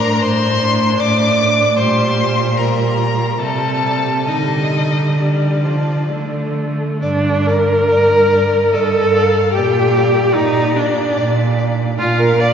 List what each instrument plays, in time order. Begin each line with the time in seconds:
Already playing: cello A2, viola D4, violin A#4 A#5
0.21 cello A2, violin C5 C6
0.61 viola D4
1.00 cello A2, violin D5 D6
1.39 viola D4
1.77 cello A#2, viola G3, violin C5 C6
2.57 viola G3, violin A#4 A#5
3.39 cello C3, viola G3, violin A4 A5
4.28 cello D3, viola G3, violin D#4 D#5
5.17 viola G3, violin D4 D5
5.64 viola F3
6.09 cello D3, viola A3
7.02 cello G2, viola D4, violin D5
7.47 viola A#4, violin D5
7.89 cello G2, violin D5
8.34 violin D5
8.72 cello G2, viola A4, violin D5 D#5
9.14 violin D5 F5
9.53 cello A#2, viola G4, violin D5 G5
9.96 violin D5
10.35 cello A#2, viola D#4, violin D5
10.76 viola D4, violin D5
11.17 cello A#2, violin D5
11.58 violin D5
11.99 cello A#2, viola F4, violin F5
12.20 viola A#4
12.40 viola D5, violin F5